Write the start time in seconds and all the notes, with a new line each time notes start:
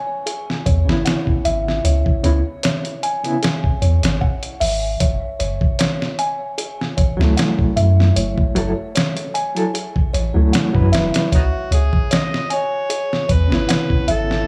Already playing: G#5
0.26 G#4, closed hi-hat
0.50 snare
0.66 E2 C#5, kick, closed hi-hat
0.85 G#1 C#3 B3
0.89 E4, snare
1.05 F#5, snare, closed hi-hat
1.27 kick
1.45 G#1 E5, closed hi-hat
1.68 snare
1.84 C#2 C#5, closed hi-hat
2.06 kick
2.23 C#2 C#3 B3 E4 C#5, closed hi-hat
2.63 C#5, snare, closed hi-hat
2.85 closed hi-hat
3.03 G#5, closed hi-hat
3.23 C#3 B3 E4, closed hi-hat
3.43 G#4, snare, closed hi-hat
3.64 kick
3.82 E2 C#5, closed hi-hat
4.03 G#1, snare, closed hi-hat
4.21 F#5, kick
4.43 closed hi-hat
4.60 G#1 E5, open hi-hat
5.00 F#1 C#5, kick, closed hi-hat
5.39 F#1 C#5, closed hi-hat
5.61 kick
5.79 C#5, snare, closed hi-hat
6.02 snare
6.19 G#5, closed hi-hat
6.58 G#4, closed hi-hat
6.81 snare
6.97 A1 C#5, kick, closed hi-hat
7.17 C#2 F#3 E4, snare
7.22 A3
7.37 F#5, snare, closed hi-hat
7.59 kick
7.76 F#2 E5, closed hi-hat
8.00 snare
8.16 F#1 C#5, closed hi-hat
8.38 kick
8.55 F#1 F#3 E4 A4 C#5, closed hi-hat
8.95 C#5, snare, closed hi-hat
9.17 closed hi-hat
9.34 G#5, closed hi-hat
9.55 F#3 E4 A4, closed hi-hat
9.74 G#4, closed hi-hat
9.96 kick
10.13 A1 C#5, closed hi-hat
10.34 C#2 F#3 A3 E4
10.53 F#5, snare, closed hi-hat
10.73 F#2 F#3 E4 B4, kick
10.92 E1 E5, snare, closed hi-hat
11.14 snare, closed hi-hat
11.32 C#2 B3 D#4 F#4 C#5, kick, closed hi-hat
11.71 C#2 G#4 C#5, closed hi-hat
11.93 kick
12.11 C#5 D#5, snare, closed hi-hat
12.34 snare
12.50 C#5 G#5, closed hi-hat
12.90 G#4, closed hi-hat
13.13 snare
13.29 E2 B4 C#5, kick, closed hi-hat
13.48 G#1 C#3 B3
13.52 E4, snare
13.68 F#5, snare, closed hi-hat
13.90 kick
14.08 G#1 A4 E5, closed hi-hat
14.31 snare